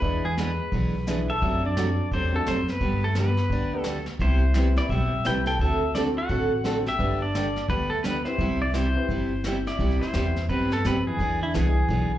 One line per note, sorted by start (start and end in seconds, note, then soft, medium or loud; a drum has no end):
0.00 0.58 E2 medium
0.00 0.24 E3 medium
0.00 0.22 G#3 medium
0.00 0.24 B3 medium
0.00 0.22 D4 medium
0.00 0.25 D4 medium
0.00 0.22 E4 medium
0.00 0.22 G#4 medium
0.00 0.25 B4 medium
0.00 0.22 B4 medium
0.00 brush sweep soft
0.00 kick soft
0.04 0.25 G#4 medium
0.24 0.36 E3 medium
0.24 0.37 G#4 medium
0.38 0.50 E3 medium
0.38 1.26 G#3 medium
0.38 0.50 B3 medium
0.38 0.50 D4 medium
0.38 0.50 G#4 medium
0.38 1.32 B4 medium
0.38 snare medium
0.38 hi-hat pedal medium
0.72 1.28 B1 medium
0.72 0.94 E3 medium
0.72 0.94 B3 medium
0.72 0.95 D4 medium
0.72 0.95 G#4 medium
0.72 brush sweep soft
0.72 kick soft
1.07 1.19 E3 medium
1.07 1.19 B3 medium
1.07 1.27 D4 medium
1.07 1.19 D4 medium
1.07 1.27 E4 medium
1.07 1.27 G#4 medium
1.07 1.19 G#4 medium
1.07 1.28 B4 medium
1.07 snare medium
1.07 hi-hat pedal medium
1.30 1.62 A4 medium
1.30 1.65 E5 medium
1.42 1.98 F#2 medium
1.42 1.64 C3 soft
1.42 1.64 F#3 medium
1.42 1.64 A3 medium
1.42 1.64 D4 medium
1.42 1.64 F#4 medium
1.42 brush sweep soft
1.42 kick soft
1.65 2.09 D4 medium
1.65 2.10 D5 medium
1.77 1.88 C3 medium
1.77 1.88 F#3 medium
1.77 1.88 A3 medium
1.77 1.89 D4 medium
1.77 1.89 F#4 medium
1.77 snare medium
1.77 hi-hat pedal medium
2.11 2.41 E2 medium
2.11 2.34 C3 medium
2.11 2.34 F#3 medium
2.11 2.34 A3 medium
2.11 2.33 C4 medium
2.11 2.34 D4 medium
2.11 2.34 F#4 medium
2.11 2.35 C5 medium
2.11 brush sweep soft
2.11 kick soft
2.32 2.47 A3 medium
2.32 2.45 C4 medium
2.32 2.45 D4 medium
2.32 2.45 F#4 medium
2.32 2.46 A4 medium
2.32 2.47 A4 medium
2.46 2.77 F#2 medium
2.46 2.58 C3 medium
2.46 2.58 F#3 medium
2.46 2.58 A3 medium
2.46 2.71 C4 medium
2.46 2.59 D4 medium
2.46 2.59 F#4 medium
2.46 2.70 C5 medium
2.46 snare medium
2.46 hi-hat pedal medium
2.68 3.05 B3 medium
2.68 3.04 B4 medium
2.68 snare soft
2.81 3.37 G2 medium
2.81 3.03 D3 medium
2.81 3.03 G3 medium
2.81 3.03 B3 medium
2.81 3.03 D4 medium
2.81 3.03 G4 medium
2.81 brush sweep soft
2.81 kick soft
3.04 3.16 A3 medium
3.04 3.17 A4 medium
3.15 3.28 D3 medium
3.15 3.28 G3 medium
3.15 3.80 B3 medium
3.15 3.28 B3 medium
3.15 3.28 D4 medium
3.15 3.29 G4 medium
3.15 3.80 B4 medium
3.15 snare medium
3.15 hi-hat pedal medium
3.37 snare soft
3.50 4.06 D2 medium
3.50 3.73 D3 medium
3.50 3.73 G3 medium
3.50 3.73 B3 medium
3.50 3.73 D4 medium
3.50 3.73 G4 medium
3.50 brush sweep soft
3.50 kick soft
3.73 3.85 B3 medium
3.73 3.85 D4 medium
3.73 3.85 G4 medium
3.73 3.85 B4 medium
3.80 4.04 A3 medium
3.80 4.05 A4 medium
3.84 3.97 D3 medium
3.84 3.97 G3 medium
3.84 3.98 B3 medium
3.84 3.98 D4 medium
3.84 3.98 G4 medium
3.84 snare medium
3.84 hi-hat pedal medium
4.06 snare soft
4.19 4.76 C2 medium
4.19 4.42 C3 medium
4.19 4.42 G3 medium
4.19 4.42 B3 medium
4.19 4.42 E4 medium
4.19 4.74 E4 medium
4.19 4.42 G4 medium
4.19 4.74 C5 loud
4.19 brush sweep soft
4.19 kick soft
4.54 4.67 C3 medium
4.54 4.67 G3 medium
4.54 4.67 B3 medium
4.54 5.08 C4 medium
4.54 5.08 E4 medium
4.54 4.67 E4 medium
4.54 4.67 G4 medium
4.54 5.08 G4 medium
4.54 5.09 B4 medium
4.54 snare medium
4.54 hi-hat pedal medium
4.76 4.92 E4 medium
4.76 4.91 D5 medium
4.76 snare soft
4.89 5.19 B1 medium
4.89 5.12 C3 medium
4.89 5.12 G3 medium
4.89 5.13 B3 medium
4.89 5.12 E4 medium
4.89 5.26 G4 medium
4.89 5.13 G4 medium
4.89 5.26 E5 medium
4.89 brush sweep soft
4.89 kick soft
5.25 5.55 C2 medium
5.25 5.36 C3 medium
5.25 5.37 G3 medium
5.25 5.37 B3 medium
5.25 5.45 C4 medium
5.25 5.45 E4 medium
5.25 5.37 E4 medium
5.25 5.37 G4 medium
5.25 5.46 G4 medium
5.25 5.46 B4 medium
5.25 5.46 G5 loud
5.25 snare medium
5.25 hi-hat pedal medium
5.46 5.59 A4 medium
5.46 5.59 G5 loud
5.46 snare soft
5.59 6.15 D2 medium
5.59 5.82 D3 medium
5.59 5.82 A3 medium
5.59 5.82 C4 medium
5.59 5.82 F#4 medium
5.59 5.93 A4 medium
5.59 5.82 A4 medium
5.59 5.93 E5 medium
5.59 brush sweep medium
5.59 kick soft
5.95 6.06 D3 medium
5.95 6.07 A3 medium
5.95 6.06 C4 medium
5.95 6.15 C4 medium
5.95 6.01 D4 medium
5.95 6.15 D4 medium
5.95 6.07 F#4 medium
5.95 6.16 F#4 medium
5.95 6.07 A4 medium
5.95 6.16 A4 medium
5.95 6.01 D5 loud
5.95 snare medium
5.95 hi-hat pedal medium
6.17 6.83 F#4 medium
6.17 6.83 F#5 loud
6.29 6.85 A1 medium
6.29 6.51 D3 medium
6.29 6.51 A3 medium
6.29 6.51 C4 medium
6.29 6.51 F#4 medium
6.29 6.51 A4 medium
6.29 brush sweep soft
6.29 kick soft
6.64 6.76 D3 medium
6.64 6.76 A3 medium
6.64 6.84 C4 medium
6.64 6.76 C4 medium
6.64 6.84 D4 medium
6.64 6.85 F#4 medium
6.64 6.76 F#4 medium
6.64 6.85 A4 medium
6.64 6.77 A4 medium
6.64 snare medium
6.64 hi-hat pedal medium
6.86 7.19 G4 medium
6.86 7.23 E5 loud
6.86 snare soft
6.98 7.55 G1 medium
6.98 7.21 D3 medium
6.98 7.21 G3 medium
6.98 7.19 B3 medium
6.98 7.21 B3 medium
6.98 7.19 D4 medium
6.98 7.21 D4 medium
6.98 7.19 G4 medium
6.98 7.21 G4 medium
6.98 7.19 B4 medium
6.98 brush sweep soft
6.98 kick soft
7.22 7.66 D4 medium
7.22 7.66 D5 medium
7.35 7.46 D3 medium
7.35 7.46 G3 medium
7.35 7.46 B3 medium
7.35 7.47 D4 medium
7.35 7.46 G4 medium
7.35 snare medium
7.35 hi-hat pedal medium
7.56 snare soft
7.68 8.25 D2 medium
7.68 7.91 D3 medium
7.68 7.91 G3 medium
7.68 7.91 B3 medium
7.68 7.91 D4 medium
7.68 7.91 G4 medium
7.68 7.90 B4 medium
7.68 brush sweep medium
7.68 kick soft
7.90 8.04 A4 medium
7.94 8.05 A3 medium
8.03 8.16 D3 medium
8.03 8.16 G3 medium
8.03 8.16 B3 medium
8.03 8.25 B3 medium
8.03 8.16 D4 medium
8.03 8.16 G4 medium
8.03 8.24 B4 medium
8.03 snare medium
8.03 hi-hat pedal medium
8.25 8.37 C4 medium
8.25 8.37 E4 medium
8.25 8.59 E4 medium
8.25 8.38 G4 medium
8.25 8.38 B4 medium
8.25 8.58 C5 medium
8.25 snare soft
8.38 8.95 C2 medium
8.38 8.61 C3 medium
8.38 8.61 G3 medium
8.38 8.61 B3 medium
8.38 8.61 E4 medium
8.38 8.62 G4 medium
8.38 brush sweep soft
8.38 kick soft
8.62 8.74 E4 medium
8.62 8.73 D5 medium
8.74 8.86 C3 medium
8.74 8.86 G3 medium
8.74 8.86 B3 medium
8.74 9.66 E4 medium
8.74 8.86 E4 medium
8.74 8.86 G4 medium
8.74 9.67 C5 medium
8.74 snare medium
8.74 hi-hat pedal medium
8.96 9.07 C4 medium
8.96 9.08 E4 medium
8.96 9.08 G4 medium
8.96 9.08 B4 medium
9.09 9.65 G1 medium
9.09 9.31 C3 medium
9.09 9.31 G3 medium
9.09 9.32 B3 medium
9.09 9.32 E4 medium
9.09 9.32 G4 medium
9.09 brush sweep soft
9.09 kick soft
9.44 9.56 C3 medium
9.44 9.56 G3 medium
9.44 9.57 B3 medium
9.44 9.56 E4 medium
9.44 9.57 G4 medium
9.44 snare medium
9.44 hi-hat pedal medium
9.67 9.99 E4 medium
9.67 10.01 D5 medium
9.67 snare soft
9.79 9.99 C2 medium
9.79 10.01 C3 medium
9.79 10.01 G3 medium
9.79 10.01 B3 medium
9.79 10.01 E4 medium
9.79 10.01 G4 medium
9.79 brush sweep medium
9.79 kick soft
9.91 snare soft
10.01 10.46 E4 medium
10.01 10.49 C5 medium
10.01 muted upright bass stroke soft
10.01 snare soft
10.13 10.48 E2 medium
10.13 10.26 C3 medium
10.13 10.33 G3 medium
10.13 10.26 G3 medium
10.13 10.33 B3 medium
10.13 10.26 B3 medium
10.13 10.34 C4 medium
10.13 10.34 E4 medium
10.13 10.26 E4 medium
10.13 10.34 G4 medium
10.13 10.26 G4 medium
10.13 snare medium
10.13 hi-hat pedal medium
10.36 snare soft
10.49 10.83 G2 medium
10.49 10.70 C3 medium
10.49 10.71 G3 medium
10.49 10.71 B3 medium
10.49 10.70 C4 medium
10.49 10.71 E4 medium
10.49 10.71 G4 medium
10.49 10.72 B4 medium
10.49 brush sweep soft
10.49 kick soft
10.72 10.84 B3 medium
10.72 10.85 A4 medium
10.72 snare medium
10.85 11.18 F2 medium
10.85 10.96 C3 medium
10.85 10.96 G3 medium
10.85 10.96 B3 medium
10.85 11.05 C4 medium
10.85 10.97 E4 medium
10.85 10.97 G4 medium
10.85 11.06 B4 medium
10.85 snare medium
10.85 hi-hat pedal soft
11.07 11.40 E3 medium
11.07 11.39 G#4 medium
11.19 11.53 E2 medium
11.19 11.41 E3 medium
11.19 11.41 B3 medium
11.19 11.41 D4 medium
11.19 11.41 G#4 medium
11.19 brush sweep soft
11.19 kick soft
11.43 11.54 D3 medium
11.43 11.54 E4 medium
11.54 11.88 C2 medium
11.54 11.65 E3 medium
11.54 12.18 E3 medium
11.54 11.74 G#3 medium
11.54 11.74 B3 medium
11.54 11.66 B3 medium
11.54 11.66 D4 medium
11.54 11.74 D4 medium
11.54 11.75 E4 medium
11.54 11.66 G#4 medium
11.54 11.75 G#4 medium
11.54 12.18 G#4 medium
11.54 snare medium
11.54 hi-hat pedal medium
11.88 12.18 B1 medium
11.88 12.11 E3 medium
11.88 12.11 B3 medium
11.88 12.11 D4 medium
11.88 12.11 G#4 medium
11.88 brush sweep soft
11.88 kick soft